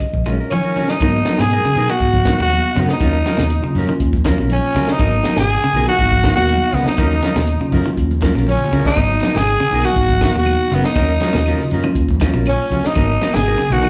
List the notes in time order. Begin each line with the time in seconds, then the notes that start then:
Already playing: D#5
0.00 kick, closed hi-hat, high conga
0.13 A#1, kick, high conga
0.26 A#1 F#3 G#3 C#4 F4 A#4, closed hi-hat, high conga, claves
0.40 C#4 F4 A#4
0.50 D#3 F3 C#4 C#5, closed hi-hat, high conga, claves
0.63 C#4 F4 A#4, closed hi-hat
0.75 D#3 F#3 C#4 F4 A#4, open hi-hat, high conga, low conga
0.88 D#4 D#5, snare, closed hi-hat
0.92 D#4
1.00 G#2 D#3 F#3 A#3 B3 D#4 A#4, kick, closed hi-hat
1.25 F#3 B3 D#4 A#4, snare, closed hi-hat, high conga
1.38 G#2 B2 G#4 G#5, snare, closed hi-hat
1.42 G#4
1.50 F#3 B3 D#4 A#4, closed hi-hat, high conga
1.64 C#3, muted fingered electric bass stroke, snare, closed hi-hat
1.74 B2 F#3 A#3 B3 D#4 A#4, open hi-hat, low conga
1.88 D#3 F#4, closed hi-hat
1.93 F#4 F#5
1.99 G#2 F#3 A#3 B3 F#4, kick, closed hi-hat, high conga
2.13 kick, closed hi-hat, high conga
2.24 D#3 F#3 A#3 B3 D#4, kick, snare, closed hi-hat, high conga
2.28 D#4 A#4
2.38 D#2 B2 F#4 F#5, snare
2.45 F#4
2.49 F#3 A#3 B3 F#4, closed hi-hat, high conga
2.75 F#2 C#3 F#3 B3 D#4 A#4 B4, snare, closed hi-hat, low conga
2.80 B3
2.89 D#4 D#5, snare
2.93 D#4
3.00 D#2 D#3 F#3 C#4 F4 A#4, kick, closed hi-hat, high conga
3.13 closed hi-hat
3.26 F#3 F4 A#4, muted clean electric guitar stroke, snare, closed hi-hat, high conga
3.37 D#2 B2, snare, closed hi-hat, low conga
3.50 closed hi-hat, high conga
3.61 C#3 F#3 A#3 C#4 F4, muted fingered electric bass stroke
3.75 F#2 F#3 C#4 F4 A#4, open hi-hat, low conga
3.86 D#3 F#3 A#3 C#4 F4, closed hi-hat, high conga
4.00 D#2, kick, closed hi-hat, high conga
4.13 kick, closed hi-hat, high conga
4.24 D#3 F#3 A#3 C#4 F4, kick, snare, closed hi-hat, high conga
4.28 A#4
4.38 A#1 B2 C#4 F4 A#4
4.50 C#4 C#5, closed hi-hat, high conga
4.55 C#4
4.64 closed hi-hat
4.74 C#2 C#3 F#3 C#4 F4 A#4, snare, closed hi-hat, low conga
4.88 D#4 D#5, snare
4.92 D#4
4.98 G#1 D#3 F#3 A#3 B3 D#4 A#4, muted clean electric guitar stroke, kick, closed hi-hat, high conga
5.23 F#3 B3 D#4 A#4, snare, closed hi-hat, high conga
5.36 G#1 B2 G#4 G#5, snare, closed hi-hat
5.49 closed hi-hat
5.61 C#3, muted fingered electric bass stroke, closed hi-hat
5.73 B1 F#3 A#3 B3 D#4 F4 A#4, open hi-hat, low conga
5.88 D#3 F#4 F#5, closed hi-hat, high conga
5.98 G#1 F#3 A#3 B3 D#4, kick, closed hi-hat, high conga
6.12 kick, closed hi-hat, high conga
6.23 D#3 F#3 A#3 B3 D#4 A#4, kick, snare, closed hi-hat, high conga
6.36 D#2 B2 B3 D#4 F#4 A#4 F#5
6.47 F#3 A#3 B3 D#4, closed hi-hat, high conga
6.73 C#2 C#3 F#3 B3 D#4 A#4 B4, closed hi-hat, high conga, low conga
6.84 D#4 D#5, snare
6.88 D#4
6.98 D#2 D#3 F#3 C#4 F4 A#4, kick, closed hi-hat, high conga
7.12 closed hi-hat
7.23 F#3 C#4 F4 A#4, snare, closed hi-hat, high conga
7.36 D#2 B2, snare, closed hi-hat
7.47 closed hi-hat, high conga
7.60 C#3 F#3 A#3 C#4 F4, muted fingered electric bass stroke
7.72 F#2 F#3 C#4 F4 A#4, kick, open hi-hat, low conga
7.84 D#3 F#3 A#3 C#4 F4, closed hi-hat, high conga
7.97 D#2, kick, closed hi-hat, high conga
8.11 closed hi-hat, high conga
8.20 D#3 F#3 A#3 C#4 F4 A#4, kick, snare, closed hi-hat, high conga
8.34 A#1 B2 C#4 F4 A#4, snare
8.47 C#4 C#5, closed hi-hat, high conga
8.56 low conga
8.62 closed hi-hat, low conga
8.72 C#2 C#3 F#3 C#4 F4 A#4, closed hi-hat
8.80 low conga
8.85 D#4 D#5, kick, snare, low conga
8.95 G#1 D#3 F#3 A#3 B3 D#4, muted clean electric guitar stroke, kick, closed hi-hat, high conga, claves
9.20 F#3 B3 D#4 A#4, snare, closed hi-hat, high conga
9.34 G#1 B2 G#4 G#5, snare, closed hi-hat, low conga
9.45 closed hi-hat, high conga, claves
9.60 C#3, snare, closed hi-hat
9.70 B1 F#3 A#3 B3 D#4, open hi-hat, low conga
9.74 D#4 A#4, muted clean electric guitar stroke
9.84 D#3 F#4 F#5, snare, closed hi-hat, high conga, claves
9.95 G#1 F#3 A#3 B3 D#4, kick, closed hi-hat, high conga
10.09 kick, closed hi-hat, high conga
10.20 D#3 F#3 A#3 B3 D#4, kick, snare, closed hi-hat, high conga, claves
10.24 A#4
10.35 D#2 B2 F#4 F#5
10.45 F#3 A#3 B3 D#4, closed hi-hat, high conga, claves
10.71 F#1 C#3 F#3 B3 D#4 A#4 B4, closed hi-hat, low conga
10.84 D#4 D#5, snare
10.95 D#2 D#3 F#3 C#4 A#4, muted clean electric guitar stroke, kick, closed hi-hat, claves
11.09 closed hi-hat
11.21 F#3 C#4 F4 A#4, snare, closed hi-hat, high conga
11.33 D#2 B2, snare, closed hi-hat
11.46 F#3 C#4 F4 A#4, closed hi-hat, high conga, claves
11.58 C#3 F#3 A#3 C#4 F4, muted fingered electric bass stroke, snare
11.71 F#2 F#3 C#4 F4 A#4, open hi-hat, low conga
11.83 D#3 F#3 A#3 C#4 F4, closed hi-hat, high conga, claves
11.95 D#2, kick, closed hi-hat
12.09 kick, closed hi-hat, high conga
12.20 D#3 F#3 A#3 C#4 F4 A#4, kick, snare, closed hi-hat, high conga, claves
12.34 A#1 B2 C#4 F4 A#4
12.46 C#4 C#5, closed hi-hat, high conga, claves
12.59 closed hi-hat
12.71 C#2 F#3 C#4 F4, closed hi-hat, high conga, low conga
12.84 D#4 D#5, snare
12.95 G#1 D#3 F#3 A#3 B3 D#4 A#4, kick, closed hi-hat, high conga, claves
13.21 F#3 B3 D#4 A#4, snare, closed hi-hat, high conga
13.34 G#1 B2 G#4 G#5, snare, closed hi-hat, low conga
13.46 F#3 B3 D#4 A#4, closed hi-hat, high conga, claves
13.58 C#3, snare, closed hi-hat
13.70 B1 F#3 A#3 B3 D#4 F#4 A#4 F#5, open hi-hat, low conga
13.83 D#3, closed hi-hat, high conga, claves